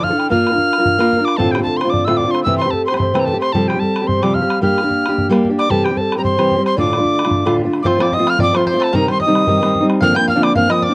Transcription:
Already playing: D2 D3 F3 D4 E4
0.04 F5 F6, bodhran
0.10 D3 D4 E4 A4
0.19 G5, bodhran
0.30 A#3 D4 F4 A#4 F5 F6, bodhran
0.47 bodhran
0.51 D4 F4 A#4, bodhran
0.58 bodhran
0.73 bodhran
0.78 D4 F4 A#4
0.86 bodhran
0.99 A#3 D4 F4 A#4, bodhran
1.13 bodhran
1.18 D4 F4 A#4
1.25 D6, bodhran
1.37 D2 A2 D3 A3 C4 F4 A4 A5, bodhran
1.51 G4 G5, bodhran
1.58 D3 A3 C4 F4, bodhran
1.63 A4 A5, bodhran
1.77 C5 C6
1.81 F4, bodhran
1.86 D3 A3 C4
1.90 D5 D6, bodhran
2.05 D2 A2 D3 A3 C4 F4 E5 E6, bodhran
2.17 D5 D6, bodhran
2.26 D3 A3 C4 F4
2.31 C5 C6, bodhran
2.44 C3 E3 A3 C4 G4 E5 E6, bodhran
2.58 C6, bodhran
2.62 G4 C5
2.67 A3 C4 A5, bodhran
2.73 A4, bodhran
2.86 C5 C6, bodhran
2.92 A3 C4 G4, bodhran
2.97 C5 C6, bodhran
3.14 C3 E3 A3 C4 G4, bodhran
3.19 A#5
3.25 A4 A5, bodhran
3.33 A3 C4 G4
3.41 C5 C6, bodhran
3.52 C3 F3 G3 C4 G4 A4 A5, bodhran
3.68 G4 G5, bodhran
3.74 G3 C4 G4, bodhran
3.80 A4 A5, bodhran
3.96 bodhran
4.02 G3 C4 G4
4.07 C5 C6, bodhran
4.22 C3 F3 G3 C4 G4 D5 D6, bodhran
4.34 F5 F6, bodhran
4.41 G3 C4 G4
4.50 bodhran
4.61 G3 A#3 D4 G4 F5 F6, bodhran
4.78 bodhran
4.83 A#3 D4 G4, bodhran
4.91 bodhran
5.06 G4, bodhran
5.10 A#3 D4
5.18 bodhran
5.29 G3 A#3 D4 G4, bodhran
5.45 bodhran
5.49 A#3 D4 G4
5.58 D5 D6, bodhran
5.69 C3 E3 G3 C4 G4 A4 A5, bodhran
5.84 G4 G5, bodhran
5.91 G3 C4
5.97 C5 A5, bodhran
6.01 A4
6.12 G4, bodhran
6.17 G3 C4 A#4 A#5
6.22 C5 C6, bodhran
6.37 C3 E3 G3 C4 G4, bodhran
6.51 bodhran
6.56 G3 C4 G4
6.64 C5 C6, bodhran
6.77 D2 A2 D3 A3 D4 F4 D5 D6, bodhran
6.93 bodhran
6.97 D3 A3 D4 F4, bodhran
7.05 bodhran
7.19 bodhran
7.24 D3 A3 D4 F4, bodhran
7.31 bodhran
7.45 D2 A2 D3 A3 D4 F4, bodhran
7.59 bodhran
7.64 D3 A3 D4 F4
7.73 bodhran
7.82 F3 A3 C4 F4 C5 D6, bodhran
7.87 C6
7.98 F3 A3 C4 F4 D5, bodhran
8.02 D6
8.12 D#5 D#6, bodhran
8.18 F3 A3 C4 F4
8.27 F5 F6, bodhran
8.38 F3 A3 C4 F4 D5, bodhran
8.42 D6
8.54 F3 A3 C4 F4 C5 C6, bodhran
8.66 C5 C6, bodhran
8.74 A3 C4 F4
8.80 A4 A5, bodhran
8.93 C3 D#3 G3 C4 D#4 A#4 A#5, bodhran
9.08 D#3 G3 C4 D#4 C5 C6, bodhran
9.20 D#5 D#6, bodhran
9.27 C3 D#3 G3 C4 D#4
9.35 bodhran
9.47 D#3 G3 C4 D#4, bodhran
9.60 D#3 G3 C4 D#4, bodhran
9.75 bodhran
9.80 G3 C4 D#4
9.90 bodhran
10.01 D2 D3 F3 A#3 C4 D4 F5 F6, bodhran
10.15 F3 A#3 C4 D4 G5 G6, bodhran
10.28 F5 F6, bodhran
10.35 D2 D3 F3 A#3 C4 D4
10.42 D5 D6, bodhran
10.55 F3 A#3 C4 D4 F5 F6, bodhran
10.69 F3 A#3 C4 D4 D#5 D#6, bodhran
10.82 D5 D6, bodhran
10.89 A#3 C4 D4

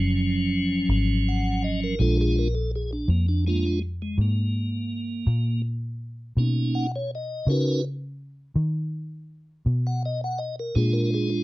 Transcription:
Already playing: F#1 F3 F#3 C#4
0.89 G#1
1.28 F#5
1.64 D#5
1.83 A#4
1.99 A#1 G#3 D4 F4 A4
2.21 G#4
2.39 A#4
2.55 A4
2.76 G#4
2.93 D4
3.08 F2 A#3
3.29 D4
3.47 G#3 A#3 D4 F4
3.66 G#3
4.02 G#3
4.18 G#2 A#3
5.27 A#2
6.37 B2 A#3 C#4 D#4
6.75 F#5
6.96 C#5
7.15 D#5
7.47 C#3 C#4 D#4 F#4 A#4
7.51 B4
8.56 D#3
9.66 B2
9.87 F#5
10.06 D#5
10.24 F#5
10.38 D#5
10.60 A#4
10.75 A#2 G#3 D4 F4 G#4
10.93 A#4
11.14 G#4
11.30 D4

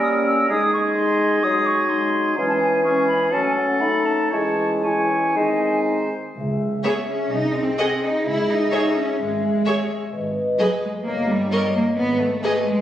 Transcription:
Already playing: G3 A#3 C#4 A#4
0.03 D#6
0.27 E6
0.49 G#3 D#4 G#4 D#6
0.74 C#6
0.96 G#3 D#4 C6
1.42 F#3 G#3 D#4 D#6
1.67 C#6
1.90 G#3 D#4 C6
2.37 E3 G#3 C#4 G#4
2.48 A5
2.60 G#5
2.84 G#3 C#4 G#4 C#6
3.08 B5
3.31 F#3 A3 C#4 A4 A5
3.44 G#5
3.56 F#5
3.80 A3 D#4 B5
4.06 A5
4.31 E3 G#3 C#4 E4 C#5 A5
4.83 E3 C#4 E4 C#5 G#5
5.35 D#3 G#3 C4 D#4 C5
6.37 C#2 G#4 E5
6.84 B3 G#4 C#5 E5
7.08 C#4
7.31 C2 D#4 D#5
7.55 C4
7.79 G#4 D#5 F#5
8.03 D#4
8.26 C#2 E4 E5
8.49 D#4
8.72 G#4 C#5 E5
8.96 C#4
9.19 G#1 G#3
9.66 G#4 C#5 E5
10.13 G#1 B4 D#5
10.59 F#3 G#4 B4 D#5
10.83 G#3
11.05 G1 A#3 C#5
11.29 G3
11.52 A#4 C#5 D#5
11.75 A#3
11.97 G#1 B3 B4
12.21 A3
12.44 G#4 B4 D#5
12.67 G#3

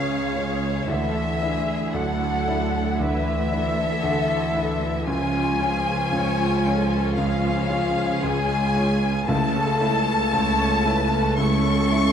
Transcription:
Already playing: C#2 C#3 G#3 C#4 G#4 C#5 F5
0.36 G#3 G#4 C#5
0.88 D2 D3 E3 E4 A4 E5
1.41 D4 E4 G#4 E5
1.93 D2 D3 F#3 A4 F#5
2.48 D4 E4 E5
2.98 D2 D3 E3 B4 E5
3.52 D4 E4 A4 E5
4.03 D2 D3
4.54 D4 E4 E5
5.07 C#2 C#3 F3 C#4 F4 G#5
5.60 C#4 F4 G#4 C#5
6.12 C#2 C#3 C#5
6.66 C#4 F4 A4 C#5
7.17 C#2 C#3 F3 G#4 F5
7.70 C#4 F4 C#5
8.22 C#2 C#3 G#3 G#5
8.76 C#4 F4 C#5
9.26 C#2 C#3 A3 E4 A4 A5
9.55 C#4 A4
9.80 A3 C#4 E4 E5
10.07 C#4 A4
10.33 C#2 C#3 A3 E4 C#5
10.59 C#4 A4
10.86 A3 C#4 E4 B4 E5
11.13 C#4 A4
11.37 C#2 C#3 A3 C#4 E4 A4 C#6
11.65 C#4 A4
11.91 A3 C#4 E4 E5

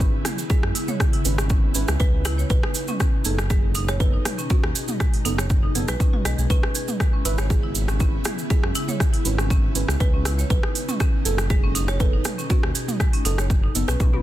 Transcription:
Already playing: G#1 C#3 B3 E4
0.00 C#4 E4 B4, kick, cabasa
0.25 E4 G#4, cross-stick, mid tom, open hi-hat, cabasa
0.38 cabasa
0.50 G#3 G#4, kick, cabasa
0.63 F#2, cross-stick
0.75 E4, open hi-hat, cabasa
0.88 C#5, mid tom, cabasa
1.00 kick, cross-stick, cabasa
1.13 E4, open hi-hat
1.25 G#1 C#4 E4 B4, open hi-hat, cabasa
1.38 C#4, cross-stick, cabasa
1.49 C#4, kick, cabasa
1.74 G#1 C#4 E4 G#4 B4, open hi-hat, cabasa
1.88 C#2, cross-stick, cabasa
2.00 C#2 G#3 B4, kick, cabasa
2.25 E4, cross-stick, open hi-hat, cabasa
2.38 C#5, cabasa
2.50 B1 B2 D#4 B4, kick, cabasa
2.63 D#4, cross-stick
2.74 open hi-hat, cabasa
2.88 C#4, mid tom, cabasa
3.00 C#4, kick, cross-stick, cabasa
3.25 F#1 B3 D#4 G#4 A4, open hi-hat, cabasa
3.38 cross-stick, cabasa
3.50 G#3 G#4, kick, cabasa
3.75 D#4, open hi-hat, cabasa
3.88 C#5, cross-stick, cabasa
4.00 B3 D#4 A4 B4, kick, cabasa
4.13 D#4
4.25 cross-stick, mid tom, open hi-hat, cabasa
4.38 C#4, cabasa
4.50 C#4 F#4, kick, cabasa
4.63 D#2, cross-stick
4.75 G#4, open hi-hat, cabasa
4.88 mid tom, cabasa
5.00 G#3, kick, cross-stick, cabasa
5.14 open hi-hat
5.25 F#1 B3 D#4 A4, open hi-hat, cabasa
5.38 C#5, cross-stick, cabasa
5.50 kick, cabasa
5.63 D#4
5.75 F#1 B3 D#4 G#4 A4, open hi-hat, cabasa
5.88 B1 G#3 B4, cross-stick, cabasa
6.00 C#4, kick, cabasa
6.13 F#4, mid tom
6.25 B1 G#3 D#5, cross-stick, open hi-hat, cabasa
6.38 B1 G#4, cabasa
6.50 C#2 C#3 B3 C#4 E4 B4, kick, cabasa
6.63 cross-stick
6.75 G#4, open hi-hat, cabasa
6.88 mid tom, cabasa
7.00 G#3, kick, cross-stick, cabasa
7.13 C#4
7.25 G#1 C#4 E4 B4, open hi-hat, cabasa
7.38 C#5, cross-stick, cabasa
7.50 G#4, kick, cabasa
7.64 E4
7.75 open hi-hat, cabasa
7.88 C#4, cross-stick, cabasa
8.00 C#4 E4 B4, kick, cabasa
8.24 E4 G#4, cross-stick, mid tom, open hi-hat, cabasa
8.38 cabasa
8.50 G#3 G#4, kick, cabasa
8.63 F#2 C#4, cross-stick
8.75 E4, open hi-hat, cabasa
8.88 C#5, mid tom, cabasa
9.00 kick, cross-stick, cabasa
9.14 E4, open hi-hat
9.25 G#1 C#4 E4 B4, open hi-hat, cabasa
9.38 C#4, cross-stick, cabasa
9.50 C#4, kick, cabasa
9.75 G#1 C#4 E4 G#4 B4, open hi-hat, cabasa
9.88 C#2, cross-stick, cabasa
10.00 C#2 G#3 B4, kick, cabasa
10.13 C#4
10.25 E4, cross-stick, open hi-hat, cabasa
10.39 C#5, cabasa
10.50 B1 B2 D#4 B4, kick, cabasa
10.63 D#4, cross-stick
10.75 open hi-hat, cabasa
10.88 C#4, mid tom, cabasa
11.00 kick, cross-stick, cabasa
11.25 F#1 B3 D#4 G#4 A4, open hi-hat, cabasa
11.38 cross-stick, cabasa
11.50 G#3 G#4, kick, cabasa
11.63 C#4
11.75 D#4, open hi-hat, cabasa
11.88 C#5, cross-stick, cabasa
12.00 B3 D#4 A4 B4, kick, cabasa
12.13 D#4
12.25 cross-stick, mid tom, open hi-hat, cabasa
12.38 C#4, cabasa
12.50 C#4 F#4, kick, cabasa
12.63 D#2, cross-stick
12.75 G#4, open hi-hat, cabasa
12.88 mid tom, cabasa
13.00 G#3, kick, cross-stick, cabasa
13.13 C#4, open hi-hat
13.25 F#1 B3 D#4 A4, open hi-hat, cabasa
13.38 C#5, cross-stick, cabasa
13.50 kick, cabasa
13.63 D#4
13.75 F#1 B3 D#4 A4, open hi-hat, cabasa
13.88 B1 C#4 B4, cross-stick, cabasa
14.00 B1 C#4, kick, high tom, cabasa
14.13 B3, high tom

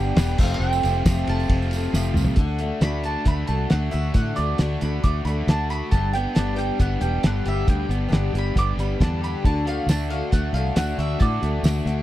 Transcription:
Already playing: G1 G3 B3 D4 G4 G5
0.15 E1 G2 D3 G3 B3 D4 G4, snare, ride, tambourine
0.29 tambourine
0.38 F1 F2 C3 F3 A3 C4 F4 G4, kick, tambourine, crash
0.43 F5
0.54 G5
0.60 F1 F2 C3 F3 A3 C4, tambourine
0.64 F4
0.73 tambourine
0.83 F1 F3 A3 C4 F4 G4, ride, tambourine
1.05 F1 F3 A3 C4 F4 G4, kick, snare, ride, tambourine
1.26 F1 F3 A3 C4 F4 G4 A5, ride, tambourine
1.39 tambourine
1.49 F1, kick, ride
1.62 tambourine
1.71 G4, ride, tambourine
1.75 A3 C4
1.84 tambourine
1.93 F1 F2 C3 F3 A3 C4 F4 G4, snare, tambourine
2.06 tambourine
2.14 C2 A3 C4 F4, mid tom, tambourine
2.18 F3
2.25 floor tom
2.36 D2 D3 A3 D4 F#4, kick, closed hi-hat
2.59 F#4, closed hi-hat
2.63 A3 D4
2.81 D2 D3 A3 D4 F#4 B5, snare, closed hi-hat
3.04 D3 A3 D4 F#4 A5, closed hi-hat
3.25 D2 D3 A3 D4 F#4 B5, kick, closed hi-hat
3.47 C2 D3 D4 F#4 A5, closed hi-hat
3.52 A3
3.70 D2 D3 A3 D4 F#4 F#5, snare, closed hi-hat
3.91 D2 F#4 E5, closed hi-hat
4.14 A2 D3 A3 D4 F#4 F#5, kick, closed hi-hat
4.36 D2 A3 D4 F#4 D5, closed hi-hat
4.58 D2 D3 A3 D4 F#4, snare, closed hi-hat
4.81 D2 D3 A3 D4 F#4 B5, closed hi-hat
5.04 D2 D3 A3 D4 F#4 D6, kick, closed hi-hat
5.25 D2 D3 A3 D4 F#4 B5, closed hi-hat
5.47 D2 D3 A3 D4 F#4 A5, snare, closed hi-hat
5.70 F#4 B5, closed hi-hat
5.91 G1 G2 D3 G3 B3 D4 G4 A5, kick, closed hi-hat
6.13 G3 B3 D4 G4 G5, closed hi-hat
6.35 G1 G2 D3 G3 B3 D4 G4 A5, snare, closed hi-hat
6.54 G3 B3 D4 G4 G5
6.58 closed hi-hat
6.78 G1 G3 B3 D4 G4 F#5, kick, closed hi-hat
7.01 E1 G3 B3 D4 G4 G5, closed hi-hat
7.23 G1 G2 D3 G3 B3 D4 G4 F#5, snare, closed hi-hat
7.46 G1 G4 E5, closed hi-hat
7.67 D2 G2 D3 G3 B3 D4 G4 G5, kick, closed hi-hat
7.89 G1 G3 B3 D4 G4, closed hi-hat
8.09 G1 G2 D3 G3 B3 D4 G4, closed hi-hat
8.13 snare
8.33 G1 G3 B3 D4 G4, closed hi-hat
8.38 B5
8.54 G1 G3 B3 D4 G4, kick, closed hi-hat
8.58 D6
8.77 G1 B3 D4 G4 B5, closed hi-hat
8.82 G3
9.00 E2 G2 D3 G3 B3 D4 G4 A5, kick, snare, closed hi-hat
9.21 G4 B5, closed hi-hat
9.45 D2 D3 A3 D4 F#4 A5, kick, closed hi-hat
9.66 A3 D4 F#4 F5, closed hi-hat
9.87 D2 D3 A3 D4 A5, snare, closed hi-hat, tambourine
9.91 F#4
10.10 D3 A3 D4 F#4 F5, closed hi-hat
10.31 D2 D3 A3 D4 F#4 F#5, kick, closed hi-hat
10.53 C2 D3 A3 D4 F#4 F5, closed hi-hat
10.76 D2 D3 A3 D4 F#4 F#5, snare, closed hi-hat, tambourine
10.98 D2 F#4 E5, closed hi-hat
11.19 A2 D3 A3 D4 F#4 A4 D5, kick, closed hi-hat
11.41 D2 A3 D4 F#4, closed hi-hat
11.63 D2 D3 A3 D4 F#4, snare, closed hi-hat, tambourine
11.86 D2 D3 A3 D4 F#4, closed hi-hat

